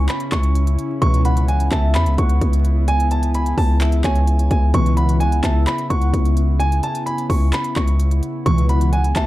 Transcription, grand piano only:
0.09 B5
0.32 C#6
1.02 C#6
1.25 B5
1.48 G#5
1.72 A5
1.95 B5
2.18 C#6
2.88 G#5
3.12 A5
3.35 B5
3.58 A5
4.04 G#5
4.51 G#5
4.74 C#6
4.97 B5
5.20 G#5
5.43 A5
5.67 B5
5.90 C#6
6.60 G#5
6.83 A5
7.06 B5
7.30 C#6
7.53 B5
7.76 C#6
8.46 C#6
8.69 B5
8.93 G#5
9.16 A5

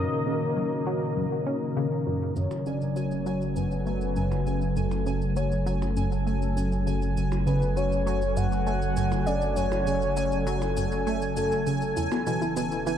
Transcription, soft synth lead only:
Already playing: A#4
1.76 A#4
2.36 C#5
2.66 D5
2.96 C#5
3.56 B4
4.76 A4
5.36 C#5
7.47 B4
7.77 C#5
8.37 F#5
9.26 D5
9.56 C#5
11.37 A4

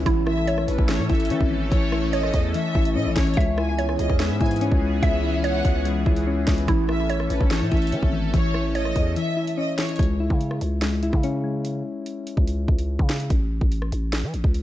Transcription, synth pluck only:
0.06 E4
0.47 C#5
2.13 C#5
3.37 E5
3.78 C#5
5.03 E5
5.44 C#5
6.68 E4
7.10 C#5
8.75 C#5

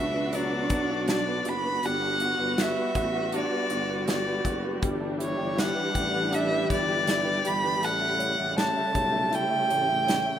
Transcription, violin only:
Already playing: E5
0.35 D5
1.11 D5
1.49 B5
1.85 F#5
2.61 E5
3.36 D5
4.09 D5
5.22 C#5
5.59 F#5
6.34 E5
6.71 D5
7.47 B5
7.85 F#5
8.58 A5
9.35 G5

